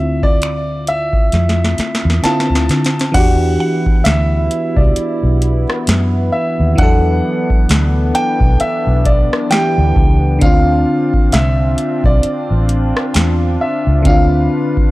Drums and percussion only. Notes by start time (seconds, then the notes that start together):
0.23 kick
0.42 finger snap, closed hi-hat
0.87 closed hi-hat
1.13 kick
1.32 snare, closed hi-hat
1.49 snare
1.64 snare
1.78 snare, closed hi-hat
1.95 snare
2.10 snare
2.24 snare, closed hi-hat
2.40 snare
2.55 snare
2.69 snare, closed hi-hat
2.85 snare, closed hi-hat
2.99 snare, closed hi-hat
3.14 kick, closed hi-hat, crash
3.86 kick
4.05 snare, closed hi-hat
4.51 closed hi-hat
4.77 kick
4.96 closed hi-hat
5.42 closed hi-hat
5.70 cross-stick
5.87 snare, closed hi-hat
6.78 kick, closed hi-hat
7.50 kick
7.69 snare, closed hi-hat
8.15 closed hi-hat
8.41 kick
8.60 closed hi-hat
9.05 kick, closed hi-hat
9.33 cross-stick
9.51 snare, closed hi-hat
9.96 kick
10.41 kick, closed hi-hat
11.14 kick
11.32 snare, closed hi-hat
11.78 closed hi-hat
12.04 kick
12.23 closed hi-hat
12.69 closed hi-hat
12.97 cross-stick
13.14 snare, closed hi-hat
14.05 kick, closed hi-hat
14.77 kick